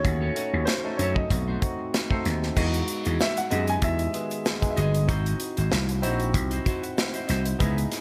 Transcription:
Already playing: grand piano C#5
0.03 slap bass D#2, tine electric piano A3 C#4 D#4 F#4, muted clean electric guitar stroke, kick, closed hi-hat
0.21 clean electric guitar C#4 F#4 A4 C#5
0.35 tine electric piano A3 C#4 D#4 F#4, clean electric guitar C#4 F#4 A4 C#5, closed hi-hat
0.52 slap bass D#2, muted clean electric guitar stroke
0.65 grand piano C5, muted clean electric guitar stroke, snare, closed hi-hat
0.84 tine electric piano A3 C#4 D#4 A4, clean electric guitar C#4 F#4 A4 D#5
0.96 slap bass F#2, clean electric guitar C#4 F#4 A4 C#5, grand piano C#5, closed hi-hat
1.14 grand piano D#5, muted clean electric guitar stroke, kick
1.30 slap bass B1, tine electric piano A3 C4 D#4 F#4, muted clean electric guitar stroke, kick, closed hi-hat
1.48 clean electric guitar A3 D#4 F#4 C5
1.61 tine electric piano A3 C4 D#4 F#4, muted clean electric guitar stroke, kick, closed hi-hat
1.79 muted clean electric guitar stroke
1.93 muted clean electric guitar stroke, snare, closed hi-hat
2.09 tine electric piano A3 C4 D#4 A4, clean electric guitar A3 D#4 F#4 C5, kick
2.25 slap bass D#2, muted clean electric guitar stroke, snare, closed hi-hat
2.42 muted clean electric guitar stroke, snare
2.56 slap bass E2, tine electric piano G#3 B3 D#4 F#4, clean electric guitar B3 F#4 G#4 D#5, kick, crash, shaker
2.73 muted clean electric guitar stroke, closed hi-hat, shaker
2.87 muted clean electric guitar stroke, closed hi-hat, shaker
3.04 slap bass E2, clean electric guitar B3 F#4 G#4 D#5, closed hi-hat, shaker
3.19 grand piano E5, muted clean electric guitar stroke, snare, shaker
3.36 grand piano F#5, muted clean electric guitar stroke, closed hi-hat, shaker
3.50 slap bass F#2, tine electric piano G#3 B3 D#4 G4, clean electric guitar B3 F#4 G#4 D#5, closed hi-hat, shaker
3.58 tine electric piano G#4
3.67 clean electric guitar B3 F#4 G#4 D#5, grand piano G#5, closed hi-hat, shaker
3.82 slap bass E2, grand piano E5, kick, closed hi-hat, shaker
3.99 muted clean electric guitar stroke, closed hi-hat, shaker
4.14 tine electric piano D#3 G#3 B3 G#4, closed hi-hat, shaker
4.30 muted clean electric guitar stroke, closed hi-hat, shaker
4.45 muted clean electric guitar stroke, snare, shaker
4.61 tine electric piano G#3 B3 D#4 G#4, muted clean electric guitar stroke, kick, closed hi-hat, shaker
4.70 grand piano E5
4.76 slap bass G1, clean electric guitar B3 F#4 G#4 D#5, grand piano D#5, closed hi-hat, shaker
4.94 muted clean electric guitar stroke, closed hi-hat, shaker
5.07 slap bass G#1, tine electric piano C4 D#4 E4 F#4, clean electric guitar E4 F#4 C5 D#5, kick, closed hi-hat, shaker
5.26 closed hi-hat, shaker
5.40 muted clean electric guitar stroke, closed hi-hat, shaker
5.57 slap bass G#1, clean electric guitar E4 F#4 C5 D#5, closed hi-hat, shaker
5.71 slap bass C2, muted clean electric guitar stroke, snare, shaker
5.87 muted clean electric guitar stroke, closed hi-hat, shaker
6.02 slap bass A#1, tine electric piano C4 D#4 E4 F#4, clean electric guitar E4 F#4 C5 D#5, closed hi-hat, shaker
6.20 muted clean electric guitar stroke, closed hi-hat, shaker
6.34 slap bass C2, muted clean electric guitar stroke, kick, closed hi-hat, shaker
6.51 clean electric guitar E4 F#4 C5 D#5, closed hi-hat, shaker
6.65 clean electric guitar E4 F#4 C5 D#5, kick, closed hi-hat, shaker
6.82 tine electric piano F#5, muted clean electric guitar stroke, closed hi-hat, shaker
6.97 muted clean electric guitar stroke, snare, shaker
7.14 clean electric guitar E4 F#4 C5 D#5, tine electric piano E5, closed hi-hat, shaker
7.28 slap bass C2, clean electric guitar E4 F#4 C5 D#5, tine electric piano D#5, snare, closed hi-hat, shaker
7.45 tine electric piano C5, muted clean electric guitar stroke, closed hi-hat, shaker
7.59 slap bass C#2, tine electric piano B3 D#4 E4 G#4, clean electric guitar B3 E4 G#4 D#5, kick, closed hi-hat, shaker
7.76 muted clean electric guitar stroke, closed hi-hat, shaker
7.91 muted clean electric guitar stroke, snare, closed hi-hat, shaker

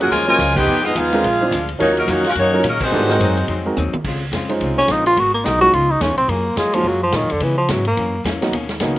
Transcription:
Already playing: upright bass F2
0.00 grand piano F#3 A#3 C#4 F4 G#4, trombone section A#3 C#4 F#4, saxophone section C#4 G#4 A#4 F#5, ride
0.11 upright bass D#2, trombone section C#3 F3 G#3, hollow-body jazz guitar F#3 A#3 F4 G#4, saxophone section F4 A#4 C#5 G#5, ride
0.27 trombone section C#3 F3 G#3, grand piano F#3 A#3 C#4 F4 A#4, saxophone section F4 A#4 C#5 G#5
0.39 upright bass C#2, hollow-body jazz guitar F#3 A#3 F4, hi-hat pedal, ride
0.43 hollow-body jazz guitar G#4
0.55 trombone section B3 D#4 G4, saxophone section F4 B4 D#5 G5, kick, crash
0.67 upright bass F2, hollow-body jazz guitar F3 B3 D#4
0.71 hollow-body jazz guitar G#4
0.84 trombone section G#3 B3 D#4, saxophone section B3 F4 G#4 D#5
0.95 upright bass D#2, hollow-body jazz guitar F3 B3 D#4 G#4, trombone section G#3 B3 F4, saxophone section D#4 G#4 B4 F5, hi-hat pedal, ride
1.12 grand piano G#3 C4 D4 F4 A#4, snare, ride
1.23 upright bass A#1, hollow-body jazz guitar A#2 F3 G#3 D4, ride
1.41 grand piano G#3 C4 D4 F4 C5
1.51 upright bass D2, hollow-body jazz guitar A#2 F3 G#3 D4, hi-hat pedal, ride
1.69 ride
1.79 upright bass D#2, hollow-body jazz guitar D#3 A#3 C#4 F#4, grand piano F#3 C#4 D#4 F4 A#4, trombone section F#3 A#3 C#4, saxophone section A#3 D#4 F#4 C#5, ride
1.95 trombone section C#3 F#3 A#3, saxophone section F#3 C#4 A#4, ride
1.99 saxophone section D#4
2.07 upright bass F2, hollow-body jazz guitar D#3 A#3 C#4 F#4, trombone section F#3 A#3 C#4, saxophone section A#3 D#4 F#4 C#5, hi-hat pedal, ride
2.24 trombone section F4, snare, ride
2.29 saxophone section C#4 F#4 A#4 F5
2.35 upright bass F#2, hollow-body jazz guitar D#3 A#3 C#4 F#4, trombone section F#3 A#3 C#4, saxophone section A#3 D#4 F#4 C#5, ride
2.53 grand piano F#3 C#4 D#4 F4 A#4
2.63 upright bass A#2, trombone section C#3 F#3 A#3, hollow-body jazz guitar D#3 A#3 C#4 F#4, hi-hat pedal, ride
2.68 saxophone section F#3 C#4 D#4 A#4
2.81 trombone section D#3 F#3 C4, saxophone section G#3 F#4 C5, kick, crash
2.85 saxophone section D#4
2.90 hollow-body jazz guitar G#2 F#3 C4 D#4, upright bass G#2, grand piano G3 B3 D4 F4 A4
3.09 grand piano G#3 C4 D#4 F#4 A#4, snare
3.19 upright bass F#2, hollow-body jazz guitar G#2 F#3 C4 D#4, hi-hat pedal, ride
3.37 ride
3.47 upright bass F2, hollow-body jazz guitar G#2 F#3 C4 D#4, ride
3.65 grand piano G#3 C4 D#4 F#4 A#4
3.76 upright bass D#2, hollow-body jazz guitar G#2 F#3 C4 D#4, hi-hat pedal, high tom
3.93 muted upright bass stroke, high tom
4.04 upright bass C#2, hollow-body jazz guitar C#3 G#3 C4 F4, kick, crash
4.32 upright bass F2, hollow-body jazz guitar C#3 G#3 C4 F4, snare, hi-hat pedal, ride
4.49 grand piano G#3 C#4 D#4 F4 C5, ride
4.60 upright bass C2, hollow-body jazz guitar C#3 G#3 C4 F4, ride
4.78 tenor saxophone C#4, snare
4.88 upright bass A#1, hollow-body jazz guitar C#3 G#3 C4 F4, tenor saxophone D#4, snare, hi-hat pedal, ride
5.06 tenor saxophone F4, ride
5.17 upright bass G#1, hollow-body jazz guitar G#3 B3 F#4 A#4, tenor saxophone F#4, ride
5.35 tenor saxophone A#3
5.44 upright bass B1, hollow-body jazz guitar G#3 B3 F#4 A#4, tenor saxophone D#4, snare, hi-hat pedal, ride
5.60 grand piano G#3 B3 C#4 D#4 F4, tenor saxophone F#4, ride
5.72 upright bass C#2, hollow-body jazz guitar C#3 F3 B3 D#4, tenor saxophone F4, ride
5.91 tenor saxophone D#4
6.00 upright bass D#2, hollow-body jazz guitar C#3 F3 B3 D#4, tenor saxophone C#4, snare, hi-hat pedal, ride
6.11 upright bass C#2
6.18 upright bass B1, tenor saxophone C4, ride
6.28 upright bass F#2, hollow-body jazz guitar F#3 A#3 F4 G#4, tenor saxophone A#3, ride
6.56 upright bass F2, hollow-body jazz guitar F#3 A#3 F4 G#4, tenor saxophone G#3, snare, hi-hat pedal, ride
6.74 tenor saxophone F3, grand piano F#3 G#3 A#3 C#4 F4, ride
6.84 upright bass F#2, hollow-body jazz guitar F#3 A#3 F4, tenor saxophone F#3
6.88 hollow-body jazz guitar G#4
7.03 tenor saxophone F3
7.12 upright bass A#2, hollow-body jazz guitar F#3 A#3 F4 G#4, snare, hi-hat pedal, ride
7.16 tenor saxophone D#3
7.23 upright bass F#2
7.30 upright bass F2, tenor saxophone D3, ride
7.40 hollow-body jazz guitar C#3 G#3 B3 E4, upright bass C#3, tenor saxophone E3, ride
7.58 tenor saxophone F3
7.69 upright bass G#2, hollow-body jazz guitar C#3 G#3 B3 E4, tenor saxophone F#3, snare, hi-hat pedal, ride
7.85 tenor saxophone A#3, ride
7.96 hollow-body jazz guitar F#2 E3 A#3 C#4, upright bass F#2, ride
8.24 upright bass E2, hollow-body jazz guitar F#2 E3 A#3 C#4, snare, hi-hat pedal, ride
8.41 grand piano F#3 A#3 B3 C#4 D#4, snare, ride
8.52 upright bass D#2, hollow-body jazz guitar B2 D#3 A#3 C#4, ride
8.69 snare, ride
8.80 upright bass C#2, hollow-body jazz guitar B2 D#3 A#3 C#4, grand piano F#3 A#3 B3 C#4 D#4, snare, hi-hat pedal, ride

